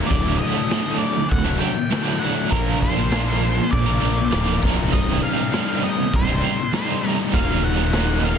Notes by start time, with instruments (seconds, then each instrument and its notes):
0.07 distorted electric guitar D2 A2 D3 F#3 A3, lead electric guitar D5, crash
0.11 fingered electric bass D1, distorted electric guitar D4, kick
0.38 lead electric guitar D#5
0.56 distorted electric guitar D3 F#3 A3 D4
0.70 distorted electric guitar D2 A2 D3 F#3 A3 D4, snare, crash
0.85 distorted electric guitar D3 F#3 A3 D4
0.98 distorted electric guitar D3 F#3 A3 D4, lead electric guitar D5
1.16 muted distorted electric guitar stroke, muted overdriven electric guitar stroke
1.29 fingered electric bass D1, lead electric guitar F#5, kick, crash
1.44 distorted electric guitar D3 F#3 A3 D4
1.59 distorted electric guitar D3 F#3 A3 D4, lead electric guitar G5
1.75 muted distorted electric guitar stroke, muted overdriven electric guitar stroke
1.90 distorted electric guitar D2 A2 D3 F#3 A3 D4, snare, crash
2.20 distorted electric guitar D3 F#3 A3 D4, lead electric guitar F#5
2.35 overdriven electric guitar D3 F#3 A3 D4
2.51 fingered electric bass A#1, distorted electric guitar A#2 F3 A#3 D4 F4 A#4, lead electric guitar A#4, kick, crash
2.81 lead electric guitar C5, kick
2.97 distorted electric guitar A#3 D4 F4 A#4
3.11 distorted electric guitar A#2 F3 A#3 D4 F4 A#4, snare, crash
3.27 distorted electric guitar A#3 D4 F4 A#4
3.41 distorted electric guitar A#3 D4 F4 A#4
3.57 muted overdriven electric guitar stroke, muted distorted electric guitar stroke
3.71 fingered electric bass A#1, lead electric guitar D5, kick, crash
3.87 distorted electric guitar A#3 D4 F4 A#4
4.02 fingered electric bass A#1, distorted electric guitar A#3 D4 F4 A#4
4.17 muted overdriven electric guitar stroke, muted distorted electric guitar stroke
4.32 fingered electric bass D1, distorted electric guitar A#2 F3 A#3 D4 F4 A#4, snare, crash
4.62 fingered electric bass C1, distorted electric guitar A#3 D4 F4 A#4, kick
4.76 overdriven electric guitar A#3 D4 F4 A#4
4.93 fingered electric bass C1, distorted electric guitar C2 G2 C3 G3 D#4, lead electric guitar D#5, kick, crash
5.23 lead electric guitar F5
5.38 distorted electric guitar C3 G3 D#4
5.53 distorted electric guitar C2 G2 C3 G3 D#4, snare, crash
5.68 distorted electric guitar C3 G3 D#4
5.83 distorted electric guitar G2 C3 G3 D#4, lead electric guitar D#5
5.97 muted overdriven electric guitar stroke, muted distorted electric guitar stroke
6.14 fingered electric bass C1, lead electric guitar C5, kick, crash
6.29 distorted electric guitar C3 G3 D#4
6.44 distorted electric guitar G2 C3 G3 D#4
6.58 muted overdriven electric guitar stroke, muted distorted electric guitar stroke
6.73 distorted electric guitar C2 G2 C3 G3 D#4, lead electric guitar C5, snare, crash
7.04 distorted electric guitar G2 C3 G3 D#4
7.18 overdriven electric guitar C3 G3 D#4
7.33 fingered electric bass D#1, distorted electric guitar D#2 A#2 D#3 F#3 A#3 D#4, lead electric guitar F5, kick, crash
7.64 lead electric guitar F#5
7.77 distorted electric guitar D#3 F#3 A#3 D#4
7.92 distorted electric guitar D#2 A#2 D#3 F#3 A#3 D#4, snare, crash
8.07 distorted electric guitar D#3 F#3 A#3 D#4
8.22 distorted electric guitar D#3 F#3 A#3 D#4, lead electric guitar F5